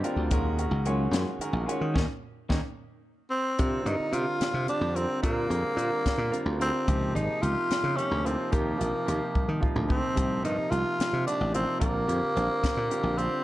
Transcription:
0.03 grand piano D3 G3 C4 F4 A#4 A#5, clean electric guitar A#3 D4 G4, closed hi-hat
0.16 slap bass D2
0.31 slap bass D#2, grand piano D#3 G#3 C#4 F#4 A#4, clean electric guitar F#3 A#3 C#4 F4, kick, closed hi-hat
0.59 grand piano D#3 G#3 C#4 F#4 A#4, closed hi-hat
0.71 slap bass C#2
0.85 grand piano D#3 G#3 C#4 F#4 C#5, clean electric guitar F#3 A#3 C#4 F4, closed hi-hat
1.11 slap bass F#2, clean electric guitar F#3 A#3 C#4 F4, snare, closed hi-hat
1.39 grand piano D#3 G#3 C#4 F#4 A#4, muted slap bass stroke, closed hi-hat
1.53 slap bass A#1
1.66 grand piano D#3 G#3 C#4 F#4 C#5, clean electric guitar A#3 C#4 F4, closed hi-hat
1.81 slap bass D#3
1.94 slap bass D#2, clean electric guitar A#3 C#4 D#4, grand piano A#3 C#4 D#4, kick, snare
2.49 slap bass D#2, clean electric guitar A#3 C#4 D#4, grand piano A#3 C#4 D#4, kick, snare
3.31 tenor saxophone C4
3.58 slap bass C3, grand piano D3 G3 C4 F4 A#4, kick, closed hi-hat
3.85 slap bass G2, grand piano D3 G3 C4 F4 A#4, tenor saxophone D#4, closed hi-hat
4.00 muted slap bass stroke
4.12 slap bass C3, grand piano D3 G3 C4 F4 A#4, tenor saxophone F4, closed hi-hat
4.41 muted slap bass stroke, snare, closed hi-hat
4.54 slap bass C3
4.68 grand piano D3 G3 C4 F4 G4, tenor saxophone D4, closed hi-hat
4.81 slap bass F2
4.95 grand piano D3 G3 C4 F4 A#4, tenor saxophone C4, closed hi-hat
5.22 slap bass A#2, grand piano D3 G3 C4 F4 A#4, tenor saxophone A#3, kick, closed hi-hat
5.50 slap bass F2, grand piano D3 G3 C4 F4 G#4, closed hi-hat
5.63 muted slap bass stroke
5.77 slap bass A#2, grand piano D3 G3 C4 F4 A#4, closed hi-hat
6.06 muted slap bass stroke, kick, snare, closed hi-hat
6.18 slap bass A#2
6.31 grand piano D3 G3 C4 F4 A#4, closed hi-hat
6.46 slap bass D2
6.59 grand piano D3 G3 C4 F4 A#4, tenor saxophone C4, closed hi-hat
6.87 slap bass C#2, grand piano C3 F3 A#3 D#4 G4, kick, closed hi-hat
7.14 slap bass G#1, grand piano C3 F3 A#3 D#4 G#4, tenor saxophone D#4, closed hi-hat
7.28 muted slap bass stroke
7.42 slap bass C#2, grand piano C3 F3 A#3 D#4 G4, tenor saxophone F4, closed hi-hat
7.71 muted slap bass stroke, snare, closed hi-hat
7.84 slap bass C#3
7.96 grand piano C3 F3 A#3 D#4 G4, tenor saxophone C#4, closed hi-hat
8.11 slap bass D2
8.24 grand piano C3 F3 A#3 D#4 F4, tenor saxophone C4, closed hi-hat
8.51 slap bass D#2, grand piano C3 F3 A#3 D#4 G4, tenor saxophone A#3, kick, closed hi-hat
8.78 slap bass A#1, grand piano C3 F3 A#3 D#4 F4, closed hi-hat
9.06 slap bass D#2, grand piano C3 F3 A#3 D#4 G4, closed hi-hat
9.35 muted slap bass stroke, kick, high tom
9.48 slap bass D#3
9.61 grand piano C3 F3 A#3 D#4 F4, kick
9.76 slap bass D2, mid tom
9.88 grand piano C3 F3 A#3 D#4 G4, tenor saxophone C4, kick
10.15 slap bass C2, grand piano C3 F3 A#3 D#4 G4, kick, closed hi-hat
10.43 slap bass G2, grand piano C3 F3 A#3 D#4 A#4, tenor saxophone D#4, closed hi-hat
10.58 muted slap bass stroke
10.71 slap bass C2, grand piano C3 F3 A#3 D#4 F4, tenor saxophone F4, closed hi-hat
10.99 muted slap bass stroke, snare, closed hi-hat
11.13 slap bass C3
11.26 grand piano C3 F3 A#3 D#4 G4, tenor saxophone D4, closed hi-hat
11.41 slap bass A1
11.53 grand piano C3 F3 A#3 D#4 F4, tenor saxophone C4, closed hi-hat
11.79 slap bass A#1, grand piano D3 G3 C4 F4 A#4, tenor saxophone A#3, kick, closed hi-hat
12.07 slap bass F2, grand piano D3 G3 C4 F4 G4, closed hi-hat
12.23 muted slap bass stroke
12.35 slap bass A#1, grand piano D3 G3 C4 F4 C5, closed hi-hat
12.64 muted slap bass stroke, kick, snare, closed hi-hat
12.77 slap bass A#2
12.90 grand piano D3 G3 C4 F4 G4, closed hi-hat
13.03 slap bass A#1
13.18 grand piano D3 G3 C4 F4 G4, tenor saxophone C4, closed hi-hat

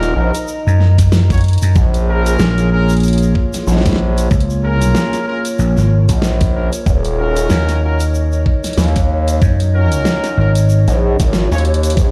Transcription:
Already playing: analog synth bass D#1, horn section C#4 F4 F#4 A#4, analog synth pad D#4 A#4 D#5 A#5
0.03 snare, closed hi-hat, shaker
0.16 analog synth bass A#1, horn section C#4 F4 F#4 A#4
0.35 closed hi-hat, shaker
0.48 shaker
0.67 slap bass F#2, shaker
0.80 snare
0.98 kick, snare, closed hi-hat, shaker
1.12 snare, shaker
1.30 horn section C#4 F4 F#4 C#5, kick, closed hi-hat, shaker
1.34 closed hi-hat
1.38 closed hi-hat
1.41 closed hi-hat
1.44 closed hi-hat
1.48 closed hi-hat
1.53 closed hi-hat
1.58 closed hi-hat, shaker
1.62 slap bass F#2, closed hi-hat
1.75 analog synth bass A#1, analog synth pad A#3 F4 G#4 C#5, kick, shaker
1.94 closed hi-hat, shaker
2.07 horn section C#4 F4 G#4 A#4
2.26 closed hi-hat, shaker
2.39 slap bass A#1, snare, shaker
2.58 closed hi-hat, shaker
2.71 horn section C#4 F4 G#4 A#4
2.89 closed hi-hat, shaker
2.93 closed hi-hat
2.97 closed hi-hat
3.00 closed hi-hat
3.03 closed hi-hat, shaker
3.08 closed hi-hat
3.13 closed hi-hat
3.18 closed hi-hat
3.22 shaker
3.35 kick
3.53 snare, closed hi-hat, shaker
3.67 analog synth bass A#1, snare, shaker
3.72 snare
3.77 snare
3.81 snare
3.86 kick, snare, closed hi-hat, shaker
3.89 snare
3.93 snare
3.96 snare
4.18 closed hi-hat, shaker
4.31 slap bass C#2, analog synth pad A#4, kick, shaker
4.40 closed hi-hat
4.50 shaker
4.63 horn section C#4 F4 G#4 A#4
4.75 slap bass C2
4.82 closed hi-hat, shaker
4.95 snare, shaker
5.13 snare, closed hi-hat, shaker
5.27 horn section C#4 F4 G#4 A#4
5.45 closed hi-hat, shaker
5.59 slap bass A#1, shaker
5.77 slap bass G#1, snare, shaker
6.09 analog synth bass A#1, kick, snare, closed hi-hat, shaker
6.22 snare, shaker
6.41 kick, closed hi-hat, shaker
6.54 horn section C#4 F4 G#4 A#4
6.73 closed hi-hat, shaker
6.86 analog synth bass D#1, analog synth pad D#4 D#5, kick, shaker
7.05 closed hi-hat, shaker
7.18 horn section C#4 F4 F#4 A#4
7.37 closed hi-hat, shaker
7.50 slap bass D#2, snare, shaker
7.69 snare, closed hi-hat, shaker
7.82 horn section C#4 F4 F#4 A#4
8.00 closed hi-hat, shaker
8.15 shaker
8.32 shaker
8.46 kick
8.64 snare, closed hi-hat, shaker
8.67 closed hi-hat
8.73 closed hi-hat
8.78 analog synth bass D#2, snare, closed hi-hat, shaker
8.84 closed hi-hat
8.88 closed hi-hat
8.96 kick, snare, closed hi-hat, shaker
9.28 closed hi-hat, shaker
9.42 slap bass F#2, kick, shaker
9.60 closed hi-hat, shaker
9.74 horn section C#4 F4 F#4 A#4
9.92 closed hi-hat, shaker
10.05 snare, shaker
10.24 snare, closed hi-hat, shaker
10.37 slap bass G#1, horn section C#4 F4 F#4 A#4
10.55 closed hi-hat, shaker
10.69 shaker
10.88 analog synth bass A#1, snare, closed hi-hat, shaker
11.20 analog synth bass G#1, kick, snare, closed hi-hat, shaker
11.33 snare, shaker
11.52 analog synth bass D#2, horn section C#4 F4 F#4 C#5, snare, shaker
11.58 closed hi-hat
11.65 closed hi-hat
11.74 closed hi-hat
11.83 closed hi-hat, shaker
11.90 closed hi-hat
11.97 analog synth bass A#1, analog synth pad A#3 F4 G#4, kick, open hi-hat, shaker

